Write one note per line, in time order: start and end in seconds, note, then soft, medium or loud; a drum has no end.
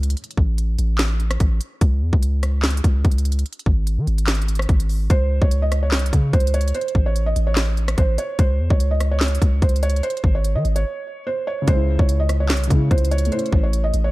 0.00 0.15 C#2 loud
0.00 closed hi-hat medium
0.10 closed hi-hat medium
0.17 closed hi-hat medium
0.24 closed hi-hat medium
0.31 closed hi-hat soft
0.37 0.77 A1 loud
0.37 kick medium
0.58 closed hi-hat medium
0.79 1.38 A1 loud
0.79 closed hi-hat medium
0.98 snare loud
0.98 clap loud
0.98 closed hi-hat medium
1.20 closed hi-hat soft
1.31 cross-stick medium
1.31 closed hi-hat medium
1.40 1.60 A1 loud
1.40 kick medium
1.40 closed hi-hat medium
1.61 closed hi-hat medium
1.81 2.03 C#2 loud
1.81 kick loud
1.81 closed hi-hat medium
2.02 2.12 E2 loud
2.13 2.81 C#2 loud
2.13 kick medium
2.23 closed hi-hat medium
2.43 cross-stick medium
2.43 closed hi-hat medium
2.63 snare loud
2.63 clap medium
2.63 closed hi-hat soft
2.70 closed hi-hat medium
2.77 closed hi-hat medium
2.84 3.04 C#2 loud
2.84 kick medium
2.84 closed hi-hat medium
3.05 3.44 C#2 loud
3.05 kick medium
3.05 closed hi-hat soft
3.11 closed hi-hat medium
3.18 closed hi-hat medium
3.25 closed hi-hat medium
3.32 closed hi-hat medium
3.39 closed hi-hat medium
3.46 closed hi-hat medium
3.53 closed hi-hat medium
3.59 closed hi-hat medium
3.66 3.99 G#1 loud
3.66 kick medium
3.87 closed hi-hat medium
3.98 4.07 D#3 loud
4.07 4.67 G#1 loud
4.07 closed hi-hat soft
4.18 closed hi-hat medium
4.27 snare loud
4.27 clap loud
4.27 closed hi-hat medium
4.35 closed hi-hat medium
4.42 closed hi-hat medium
4.48 closed hi-hat medium
4.55 closed hi-hat medium
4.59 cross-stick medium
4.59 closed hi-hat soft
4.69 5.08 G#1 loud
4.69 kick medium
4.69 closed hi-hat soft
4.80 closed hi-hat medium
4.89 open hi-hat medium
5.10 5.40 C#2 loud
5.10 5.40 C5 medium
5.10 kick loud
5.10 closed hi-hat medium
5.42 5.94 C#2 loud
5.42 5.61 C#5 medium
5.42 kick medium
5.51 closed hi-hat medium
5.62 5.81 D#5 medium
5.72 cross-stick medium
5.72 closed hi-hat medium
5.83 6.30 C#5 medium
5.92 6.12 C2 loud
5.92 snare loud
5.92 clap loud
5.92 closed hi-hat soft
5.99 closed hi-hat medium
6.06 closed hi-hat medium
6.13 6.33 C#3 loud
6.13 kick medium
6.13 closed hi-hat medium
6.33 6.73 C#2 loud
6.33 6.53 C5 medium
6.33 kick medium
6.33 closed hi-hat soft
6.40 closed hi-hat medium
6.47 closed hi-hat medium
6.54 6.73 C#5 medium
6.54 closed hi-hat medium
6.61 closed hi-hat medium
6.68 closed hi-hat medium
6.74 7.04 C5 medium
6.74 closed hi-hat medium
6.81 closed hi-hat medium
6.88 closed hi-hat soft
6.95 7.34 A1 loud
6.95 kick medium
7.06 7.25 C#5 medium
7.16 closed hi-hat medium
7.26 7.46 D#5 medium
7.36 7.95 A1 loud
7.36 closed hi-hat medium
7.47 7.95 C#5 medium
7.56 snare loud
7.56 clap medium
7.56 closed hi-hat medium
7.77 closed hi-hat soft
7.88 cross-stick medium
7.88 closed hi-hat medium
7.98 8.18 A1 loud
7.98 8.17 C5 medium
7.98 kick loud
7.98 closed hi-hat medium
8.18 8.38 C#5 medium
8.18 closed hi-hat medium
8.39 8.61 C#2 loud
8.39 8.68 C5 medium
8.39 kick loud
8.39 closed hi-hat medium
8.59 8.70 E2 loud
8.70 9.39 C#2 loud
8.70 8.90 C#5 medium
8.70 kick medium
8.80 closed hi-hat medium
8.91 9.10 D#5 medium
9.00 cross-stick medium
9.00 closed hi-hat medium
9.11 9.59 C#5 medium
9.20 snare loud
9.20 clap loud
9.20 closed hi-hat soft
9.28 closed hi-hat medium
9.35 closed hi-hat medium
9.42 9.61 C#2 loud
9.42 kick medium
9.42 closed hi-hat medium
9.62 10.02 C#2 loud
9.62 9.81 C5 medium
9.62 kick medium
9.62 closed hi-hat soft
9.69 closed hi-hat medium
9.76 closed hi-hat medium
9.83 10.02 C#5 medium
9.83 closed hi-hat medium
9.90 closed hi-hat medium
9.96 closed hi-hat medium
10.03 10.33 C5 medium
10.03 closed hi-hat medium
10.10 closed hi-hat medium
10.17 closed hi-hat soft
10.24 10.57 G#1 loud
10.24 kick medium
10.35 10.54 C#5 medium
10.44 closed hi-hat medium
10.55 10.64 D#3 loud
10.55 10.75 D#5 medium
10.65 10.85 G#1 loud
10.65 closed hi-hat soft
10.76 11.23 C#5 medium
10.76 closed hi-hat medium
11.27 11.46 C5 medium
11.47 11.66 C#5 medium
11.62 12.65 C#3 medium
11.68 11.98 C#2 loud
11.68 12.68 G#3 medium
11.68 11.97 C5 loud
11.68 kick loud
11.68 closed hi-hat medium
11.73 12.71 E4 medium
11.99 12.51 C#2 loud
11.99 12.19 C#5 medium
11.99 kick medium
12.09 closed hi-hat medium
12.20 12.39 D#5 medium
12.29 cross-stick medium
12.29 closed hi-hat medium
12.40 12.88 C#5 medium
12.49 12.69 C2 loud
12.49 snare loud
12.49 clap medium
12.49 closed hi-hat soft
12.57 closed hi-hat medium
12.64 13.31 C#3 medium
12.64 closed hi-hat medium
12.70 12.90 C#3 loud
12.70 13.32 G#3 soft
12.70 13.31 E4 medium
12.70 kick medium
12.70 closed hi-hat medium
12.91 13.30 C#2 loud
12.91 13.10 C5 medium
12.91 kick medium
12.91 closed hi-hat soft
12.98 closed hi-hat medium
13.05 closed hi-hat medium
13.11 13.31 C#5 medium
13.11 closed hi-hat medium
13.18 closed hi-hat medium
13.25 14.12 A3 medium
13.25 closed hi-hat medium
13.32 14.12 E4 medium
13.32 13.62 C5 medium
13.32 closed hi-hat medium
13.38 14.12 C#4 medium
13.38 closed hi-hat medium
13.46 closed hi-hat soft
13.53 13.92 A1 loud
13.53 kick medium
13.63 13.83 C#5 medium
13.73 closed hi-hat medium
13.84 14.03 D#5 medium
13.94 14.12 A1 loud
13.94 closed hi-hat medium
14.04 14.12 C#5 medium